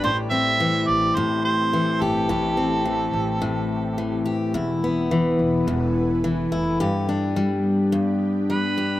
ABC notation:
X:1
M:4/4
L:1/8
Q:"Swing 16ths" 1/4=106
K:Am
V:1 name="Harmonica"
c e2 d c c2 A- | A6- A z | z8 | z6 B2 |]
V:2 name="Ambient pad"
[A,CG]8- | [A,CG]8 | [E,EAB]8 | [B,DG]8 |]
V:3 name="Steel-string acoustic guitar" clef=bass
[A,,G] C E,2 A,,2 E, G | [A,,G] C E,2 A,,2 E, G | [E,,E] B, E,2 E,,2 E, E | [G,,G] D G,2 G,,2 G, G |]
V:4 name="Upright bass" clef=bass
A,,,3 A,,, A,,,3 G,,, | A,,,3 A,,,4 z | E,,,3 E,,, E,,,3 F,,, | z8 |]